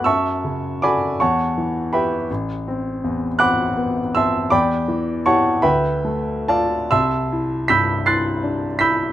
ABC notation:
X:1
M:6/8
L:1/8
Q:3/8=53
K:A
V:1 name="Grand piano"
[eac'e']2 [dgbd'] [cfac']2 [Be=gb] | z3 [fbd'f']2 [ea=c'e'] | [d=gbd']2 [cfac'] [Begb]2 [Ad=fa] | [ea=c'e']2 [be'=g'b'] [c'f'a'=c'']2 [be'g'b'] |]
V:2 name="Grand piano"
F,, C, [FA] E,, E, =G | A,,, =C E,, C B, C | E,, E, [E=G] D,, A, =F | =C,, E =G,, E D E |]